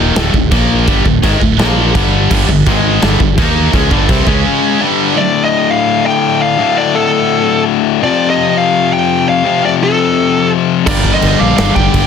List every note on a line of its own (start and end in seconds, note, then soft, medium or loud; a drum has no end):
0.00 0.14 D#1 loud
0.00 0.15 D#2 medium
0.00 0.16 A#2 medium
0.00 0.16 D#3 loud
0.16 0.33 D1 loud
0.16 0.33 D2 medium
0.16 0.33 A2 loud
0.16 0.34 D3 loud
0.16 snare loud
0.16 china medium
0.34 0.51 D1 medium
0.34 0.48 D2 medium
0.34 0.49 A2 medium
0.34 kick loud
0.51 0.85 A#1 loud
0.51 0.86 A#2 medium
0.51 0.87 F3 loud
0.51 0.87 A#3 loud
0.51 kick loud
0.51 china medium
0.87 1.04 G1 medium
0.87 1.05 G2 loud
0.87 1.05 D3 loud
0.87 1.05 G3 loud
0.87 kick loud
0.87 china medium
1.05 1.22 D1 medium
1.05 1.20 D2 medium
1.05 1.20 A2 medium
1.05 kick medium
1.22 1.40 G#1 loud
1.22 1.40 G#2 medium
1.22 1.40 D#3 loud
1.22 1.41 G#3 loud
1.22 kick loud
1.22 china medium
1.40 1.58 D1 medium
1.40 1.55 D2 medium
1.40 1.55 A2 medium
1.40 kick medium
1.58 1.92 A#1 loud
1.58 1.94 A#2 loud
1.58 1.94 F3 medium
1.58 1.94 A#3 loud
1.58 snare loud
1.58 china medium
1.94 2.28 G1 medium
1.94 2.29 G2 loud
1.94 2.30 D3 loud
1.94 2.30 G3 loud
1.94 kick loud
1.94 china medium
2.30 2.47 G1 medium
2.30 2.47 G2 loud
2.30 2.47 D3 loud
2.30 2.48 G3 loud
2.30 kick loud
2.30 china medium
2.30 crash loud
2.48 2.65 G1 medium
2.48 2.62 G2 medium
2.48 2.63 D3 medium
2.48 kick medium
2.66 2.99 G#1 loud
2.66 3.01 G#2 loud
2.66 3.02 D#3 medium
2.66 3.02 G#3 loud
2.66 kick loud
2.66 china medium
3.02 3.19 G1 medium
3.02 3.19 G2 medium
3.02 3.19 D3 loud
3.02 3.20 G3 loud
3.02 snare loud
3.02 china medium
3.20 3.37 G1 medium
3.20 3.34 G2 medium
3.20 3.37 D3 medium
3.20 kick loud
3.37 3.71 D#2 medium
3.37 3.72 D#3 loud
3.37 3.73 A#3 loud
3.37 3.73 D#4 loud
3.37 kick loud
3.37 china medium
3.73 3.90 C#2 loud
3.73 3.90 C#3 loud
3.73 3.91 G#3 loud
3.73 3.91 C#4 loud
3.73 kick loud
3.73 china medium
3.91 4.08 G1 loud
3.91 4.08 G2 loud
3.91 4.09 D3 loud
3.91 4.09 G3 loud
3.91 kick loud
4.09 4.26 C2 loud
4.09 4.26 C3 loud
4.09 4.26 G3 medium
4.09 4.27 C4 loud
4.09 kick loud
4.09 china medium
4.27 4.43 C#2 medium
4.27 4.80 C#3 loud
4.27 4.80 G#3 loud
4.27 4.80 C#4 loud
4.27 kick loud
4.80 5.14 G2 medium
4.80 5.16 D3 loud
4.80 5.16 G3 loud
5.15 6.57 D2 loud
5.15 6.58 A2 loud
5.15 6.59 D3 loud
5.15 5.44 D5 loud
5.44 5.71 D#5 medium
5.71 6.06 F5 loud
6.06 6.39 G5 loud
6.42 6.75 F5 medium
6.58 8.00 D2 medium
6.58 8.01 A2 loud
6.58 8.01 D3 loud
6.78 6.94 D5 loud
6.95 7.62 A4 medium
8.01 9.42 F2 medium
8.01 9.44 C3 loud
8.01 9.44 F3 loud
8.01 8.30 D5 loud
8.30 8.57 D#5 loud
8.58 8.93 F5 loud
8.93 9.25 G5 loud
9.29 9.61 F5 medium
9.44 10.86 F2 loud
9.44 10.87 C3 loud
9.44 10.87 F3 loud
9.65 9.70 D5 loud
9.83 10.49 A4 medium
10.86 11.10 G1 loud
10.86 12.07 G2 loud
10.86 12.07 D3 loud
10.86 12.07 G3 loud
10.86 12.07 A#3 medium
10.86 12.07 D4 loud
10.86 12.07 G4 loud
10.86 11.12 A#4 medium
10.86 11.12 D5 loud
10.86 kick loud
10.86 china medium
10.86 crash loud
11.05 kick medium
11.13 11.38 C5 medium
11.13 11.42 D#5 loud
11.22 11.34 G1 medium
11.22 china medium
11.39 11.52 A#1 loud
11.39 11.55 D5 medium
11.39 11.56 F5 loud
11.56 11.70 G1 loud
11.56 12.07 G2 medium
11.56 12.07 D3 medium
11.56 11.73 D5 loud
11.56 11.74 F5 loud
11.56 snare loud
11.56 china medium
11.60 12.07 G3 medium
11.75 11.88 G1 medium
11.75 12.07 D5 loud
11.75 12.07 G5 loud
11.75 kick loud
11.94 12.05 G1 medium
11.94 kick loud
11.94 china medium